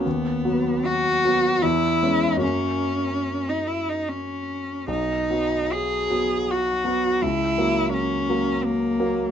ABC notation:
X:1
M:3/4
L:1/16
Q:1/4=78
K:B
V:1 name="Cello"
B,4 F4 E4 | C4- C D E D C4 | D4 G4 F4 | E4 C4 A,4 |]
V:2 name="Grand piano" clef=bass
D,,2 [F,B,]4 [F,B,]2 E,,2 [G,B,C]2 | [F,,F,A,C]12 | B,,,2 [F,B,]4 [F,B,]4 [F,B,]2 | C,,2 [F,A,]4 [F,A,]4 [F,A,]2 |]